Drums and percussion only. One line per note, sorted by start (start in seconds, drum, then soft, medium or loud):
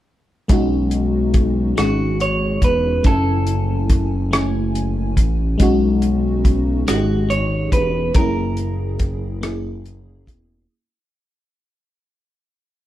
0.49 kick loud
0.49 closed hi-hat medium
0.91 closed hi-hat soft
1.34 kick medium
1.34 closed hi-hat medium
1.78 cross-stick medium
1.78 closed hi-hat medium
2.20 closed hi-hat soft
2.62 kick medium
2.62 closed hi-hat medium
3.04 kick medium
3.04 closed hi-hat medium
3.47 closed hi-hat soft
3.90 kick medium
3.90 closed hi-hat medium
4.33 cross-stick loud
4.33 closed hi-hat medium
4.75 closed hi-hat soft
5.17 kick medium
5.17 closed hi-hat medium
5.60 kick medium
5.60 closed hi-hat medium
6.02 closed hi-hat soft
6.45 kick medium
6.45 closed hi-hat medium
6.88 cross-stick medium
6.88 closed hi-hat medium
7.30 closed hi-hat soft
7.72 kick medium
7.72 closed hi-hat medium
8.15 kick loud
8.15 closed hi-hat medium
8.57 closed hi-hat soft
8.99 kick medium
8.99 closed hi-hat medium
9.43 cross-stick medium
9.43 closed hi-hat medium
9.86 closed hi-hat soft
10.27 kick medium
10.27 closed hi-hat medium